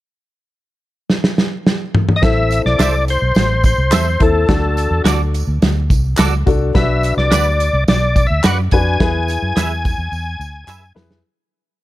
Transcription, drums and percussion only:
1.10 snare
1.24 snare
1.38 snare
1.67 snare
1.95 mid tom
2.09 mid tom
2.23 kick, snare, closed hi-hat
2.51 closed hi-hat, tambourine
2.66 snare
2.80 snare, clap, closed hi-hat, tambourine
3.08 closed hi-hat, tambourine
3.35 snare, closed hi-hat, tambourine
3.64 kick, closed hi-hat, tambourine
3.92 snare, clap, closed hi-hat, tambourine
4.20 kick, closed hi-hat
4.49 kick, snare, closed hi-hat
4.77 closed hi-hat, tambourine
5.05 snare, clap, closed hi-hat, tambourine
5.34 closed hi-hat, tambourine
5.62 snare, closed hi-hat, tambourine
5.90 kick, closed hi-hat, tambourine
6.17 snare, clap, closed hi-hat, tambourine
6.47 kick, closed hi-hat, tambourine
6.75 kick, snare, closed hi-hat
7.03 closed hi-hat, tambourine
7.18 snare
7.31 snare, clap, closed hi-hat, tambourine
7.60 closed hi-hat, tambourine
7.88 snare, closed hi-hat, tambourine
8.16 kick, closed hi-hat, tambourine
8.44 snare, clap, closed hi-hat, tambourine
8.71 kick, closed hi-hat, tambourine
9.00 kick, snare, closed hi-hat
9.28 closed hi-hat, tambourine
9.56 snare, clap, closed hi-hat, tambourine
9.85 kick, closed hi-hat, tambourine
10.13 tambourine
10.41 tambourine
10.68 clap, tambourine
10.97 snare, tambourine
11.11 snare

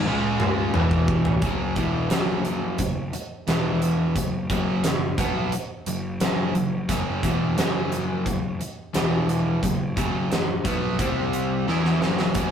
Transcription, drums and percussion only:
0.06 high tom
0.40 mid tom
0.74 mid tom
0.91 kick
1.08 kick
1.25 floor tom
1.42 kick, closed hi-hat
1.76 kick, closed hi-hat
2.10 snare, closed hi-hat
2.45 closed hi-hat
2.78 kick, closed hi-hat
3.13 closed hi-hat
3.48 snare, closed hi-hat
3.82 closed hi-hat
4.16 kick, closed hi-hat
4.50 kick, closed hi-hat
4.84 snare, closed hi-hat
5.18 kick, closed hi-hat
5.52 closed hi-hat
5.86 closed hi-hat
6.20 snare, closed hi-hat
6.55 closed hi-hat
6.89 kick, closed hi-hat
7.23 kick, closed hi-hat
7.58 snare, closed hi-hat
7.92 closed hi-hat
8.26 kick, closed hi-hat
8.61 closed hi-hat
8.94 snare, closed hi-hat
9.29 closed hi-hat
9.63 kick, closed hi-hat
9.97 kick, closed hi-hat
10.32 snare, closed hi-hat
10.65 kick, closed hi-hat
10.99 kick, closed hi-hat
11.33 closed hi-hat
11.68 snare
11.85 snare
12.02 snare
12.19 snare
12.35 kick, closed hi-hat

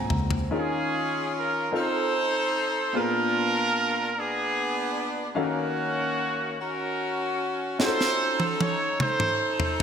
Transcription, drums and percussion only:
0.10 floor tom
0.30 floor tom
7.80 snare
8.01 snare
8.40 high tom
8.61 high tom
9.00 mid tom
9.20 mid tom
9.60 floor tom

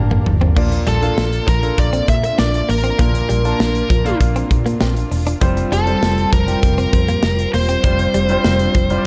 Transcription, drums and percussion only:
0.11 mid tom
0.26 floor tom
0.41 floor tom
0.56 kick, crash
0.72 closed hi-hat
0.87 closed hi-hat
1.02 closed hi-hat
1.18 snare
1.33 closed hi-hat
1.48 kick, closed hi-hat
1.63 closed hi-hat
1.78 kick, closed hi-hat
1.93 closed hi-hat
2.08 kick, closed hi-hat
2.24 closed hi-hat
2.39 snare
2.54 closed hi-hat
2.69 open hi-hat
2.84 closed hi-hat
2.99 kick, closed hi-hat
3.15 closed hi-hat
3.30 closed hi-hat
3.45 closed hi-hat
3.60 snare
3.75 closed hi-hat
3.90 kick, closed hi-hat
4.06 closed hi-hat
4.21 kick, closed hi-hat
4.36 closed hi-hat
4.51 kick, closed hi-hat
4.66 closed hi-hat
4.81 snare
4.96 closed hi-hat
5.12 open hi-hat
5.26 closed hi-hat
5.41 kick, closed hi-hat
5.57 closed hi-hat
5.72 closed hi-hat
5.87 closed hi-hat
6.03 snare
6.18 closed hi-hat
6.33 kick, closed hi-hat
6.48 closed hi-hat
6.63 kick, closed hi-hat
6.78 closed hi-hat
6.93 kick, closed hi-hat
7.08 closed hi-hat
7.23 snare
7.39 closed hi-hat
7.54 open hi-hat
7.69 closed hi-hat
7.84 kick, closed hi-hat
7.99 closed hi-hat
8.14 closed hi-hat
8.29 closed hi-hat
8.44 snare
8.59 closed hi-hat
8.74 kick, closed hi-hat
8.90 closed hi-hat

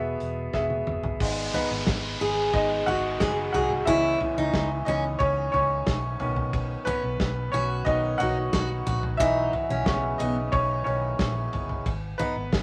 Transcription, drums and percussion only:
0.20 closed hi-hat
0.53 kick, snare
0.70 high tom
0.87 mid tom
1.04 floor tom
1.20 kick, crash
1.54 floor tom, ride
1.87 kick, snare, ride
2.20 ride
2.53 kick, ride
2.87 floor tom, ride
3.20 kick, snare, ride
3.54 floor tom, ride
3.70 floor tom
3.87 kick, ride
4.20 floor tom, ride
4.54 kick, snare, ride
4.86 ride
5.20 kick, ride
5.54 floor tom, ride
5.86 kick, snare, ride
6.20 floor tom, ride
6.36 floor tom
6.53 kick, ride
6.86 floor tom, ride
7.20 kick, snare, ride
7.53 ride
7.86 kick, ride
8.20 floor tom, ride
8.53 kick, snare, ride
8.86 floor tom, ride
9.03 floor tom
9.20 kick, ride
9.53 floor tom, ride
9.86 kick, snare, ride
10.19 ride
10.53 kick, ride
10.86 ride
11.19 kick, snare, ride
11.53 floor tom, ride
11.69 floor tom
11.86 kick, ride
12.20 floor tom, ride
12.53 kick, snare, ride

